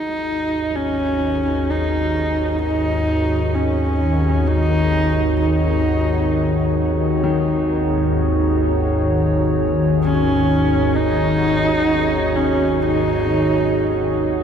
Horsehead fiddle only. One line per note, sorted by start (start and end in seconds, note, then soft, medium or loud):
0.00 0.77 D#4 loud
0.75 1.71 C#4 loud
1.70 2.61 D#4 medium
2.62 3.56 D#4 loud
3.55 4.49 C#4 medium
4.47 5.39 D#4 loud
5.40 6.74 D#4 medium
10.03 10.97 C#4 loud
10.95 12.37 D#4 loud
12.36 12.84 C#4 loud
12.83 14.25 D#4 medium